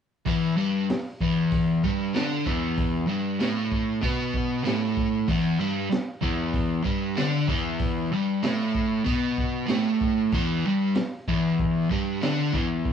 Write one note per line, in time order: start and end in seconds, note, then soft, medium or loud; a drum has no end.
0.26 0.57 E2 medium
0.26 0.58 E3 loud
0.26 kick loud
0.26 open hi-hat medium
0.57 0.88 G2 medium
0.57 0.89 G3 loud
0.89 muted overdriven electric guitar stroke medium
0.89 snare loud
0.89 open hi-hat medium
1.21 1.83 E2 medium
1.21 1.84 E3 loud
1.21 kick medium
1.52 kick loud
1.52 open hi-hat medium
1.84 2.14 G2 medium
1.84 2.14 G3 loud
1.84 kick medium
2.13 2.45 D3 medium
2.13 2.46 D4 loud
2.13 snare loud
2.13 open hi-hat medium
2.46 3.07 E2 medium
2.46 3.08 E3 loud
2.46 kick medium
2.77 kick loud
2.77 open hi-hat medium
3.07 3.39 G2 medium
3.07 3.39 G3 medium
3.39 4.01 A2 medium
3.39 4.02 A3 medium
3.39 snare loud
3.39 open hi-hat medium
3.71 kick medium
4.01 4.64 B2 medium
4.01 4.65 B3 loud
4.01 kick loud
4.01 open hi-hat medium
4.34 kick medium
4.64 5.27 A2 medium
4.64 5.28 A3 medium
4.64 snare loud
4.64 open hi-hat medium
4.97 kick medium
5.28 5.59 E2 medium
5.28 5.60 E3 loud
5.28 kick loud
5.28 open hi-hat medium
5.59 5.90 G2 medium
5.59 5.91 G3 loud
5.92 muted overdriven electric guitar stroke medium
5.92 snare loud
5.92 open hi-hat medium
6.22 6.83 E2 medium
6.22 6.85 E3 loud
6.22 kick medium
6.54 kick loud
6.54 open hi-hat medium
6.84 7.16 G2 medium
6.84 7.16 G3 loud
6.84 kick medium
7.16 7.47 D3 medium
7.16 7.48 D4 loud
7.16 snare loud
7.16 open hi-hat medium
7.48 8.11 E2 medium
7.48 8.11 E3 loud
7.48 kick medium
7.79 kick loud
7.79 open hi-hat medium
8.12 8.43 G2 medium
8.12 8.44 G3 medium
8.43 9.04 A2 medium
8.43 9.06 A3 medium
8.43 snare loud
8.43 open hi-hat medium
8.75 kick medium
9.05 9.66 B2 medium
9.05 9.68 B3 loud
9.05 kick loud
9.05 open hi-hat soft
9.38 kick medium
9.66 10.31 A2 medium
9.66 10.31 A3 loud
9.66 snare loud
9.66 open hi-hat soft
10.01 kick medium
10.32 10.64 E2 medium
10.32 10.64 E3 loud
10.32 kick loud
10.32 open hi-hat soft
10.66 10.96 G2 medium
10.66 10.96 G3 medium
10.95 muted overdriven electric guitar stroke medium
10.95 snare loud
10.95 open hi-hat medium
11.28 11.90 E2 medium
11.28 11.91 E3 medium
11.28 kick medium
11.59 kick loud
11.59 open hi-hat medium
11.90 12.22 G2 medium
11.90 12.22 G3 loud
11.90 kick medium
12.21 12.53 D3 medium
12.21 12.54 D4 loud
12.21 snare loud
12.21 open hi-hat medium
12.52 12.93 E2 medium
12.52 12.93 E3 loud
12.52 kick medium
12.85 kick loud
12.85 open hi-hat medium